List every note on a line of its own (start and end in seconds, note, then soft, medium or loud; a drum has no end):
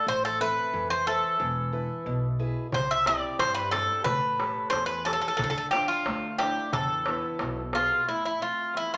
0.07 0.53 A1 medium
0.07 0.71 A3 medium
0.07 0.24 C5 medium
0.25 0.40 A4 medium
0.40 0.93 C4 soft
0.40 0.93 A4 soft
0.40 0.87 B4 medium
0.40 0.94 E5 medium
0.73 1.20 F1 medium
0.73 1.38 E3 medium
0.90 1.06 C5 medium
1.06 1.33 A4 soft
1.06 2.36 A4 medium
1.06 1.33 C5 soft
1.06 1.34 E5 medium
1.39 1.86 E1 medium
1.39 2.04 E3 medium
1.72 2.26 E4 soft
1.72 2.26 B4 soft
2.06 2.53 B1 medium
2.06 2.71 B2 medium
2.39 2.66 E4 soft
2.39 2.66 G#4 soft
2.39 2.66 B4 medium
2.72 3.19 C2 medium
2.72 3.38 C3 medium
2.72 2.91 C5 medium
2.72 darbuka dum medium
2.91 3.07 E5 medium
3.06 3.60 C4 soft
3.06 3.60 E4 soft
3.06 3.61 G4 medium
3.06 3.38 D5 medium
3.06 darbuka tek medium
3.39 3.86 G2 medium
3.39 4.05 G3 medium
3.39 3.54 C5 loud
3.39 darbuka tek medium
3.54 3.71 B4 medium
3.71 4.00 C4 soft
3.71 4.00 E4 soft
3.71 4.00 G4 medium
3.71 4.04 A4 medium
3.71 darbuka tek medium
3.89 darbuka tek soft
4.04 4.52 A1 medium
4.04 4.72 A3 medium
4.04 4.69 B4 medium
4.04 darbuka dum medium
4.39 4.93 G4 soft
4.39 4.93 A4 soft
4.39 4.93 C#5 medium
4.39 darbuka tek medium
4.70 5.19 E2 medium
4.70 5.38 E3 medium
4.70 4.86 C5 medium
4.70 darbuka tek medium
4.86 5.05 B4 medium
5.05 5.33 G4 soft
5.05 5.12 A4 medium
5.05 5.34 A4 soft
5.05 5.33 C#5 soft
5.05 darbuka tek medium
5.13 5.20 A4 medium
5.22 5.27 A4 medium
5.22 darbuka tek soft
5.28 5.36 A4 medium
5.37 5.86 D2 medium
5.37 5.73 D3 medium
5.37 5.42 A4 medium
5.37 darbuka dum medium
5.43 5.49 A4 medium
5.50 5.56 A4 medium
5.58 5.66 A4 medium
5.71 6.27 D4 medium
5.71 6.27 F4 medium
5.71 5.87 G4 medium
5.71 6.27 E5 soft
5.71 darbuka tek medium
5.88 6.35 F4 medium
6.05 6.53 D2 medium
6.05 6.72 A3 medium
6.05 darbuka tek medium
6.38 6.67 D4 medium
6.38 6.67 E4 soft
6.38 6.67 F4 medium
6.38 6.73 G4 medium
6.38 darbuka tek medium
6.56 darbuka tek soft
6.72 7.20 E2 medium
6.72 7.38 E3 medium
6.72 7.70 A4 medium
6.72 darbuka dum medium
6.90 darbuka tek soft
7.06 7.61 B3 soft
7.06 7.61 E4 soft
7.06 7.62 B4 soft
7.06 darbuka tek medium
7.23 darbuka tek soft
7.39 7.87 B1 medium
7.39 8.06 B2 medium
7.39 darbuka tek medium
7.57 darbuka tek soft
7.73 8.01 B3 soft
7.73 8.08 F4 medium
7.73 8.01 G#4 medium
7.73 8.01 E5 soft
7.73 darbuka tek medium
7.89 darbuka tek soft
8.08 8.41 A2 medium
8.08 8.24 E4 medium
8.25 8.40 E4 medium
8.41 8.95 A3 soft
8.41 8.95 C4 soft
8.41 8.76 F4 medium
8.41 8.95 E5 soft
8.74 8.97 E2 medium
8.74 8.91 E4 medium
8.94 8.97 F4 medium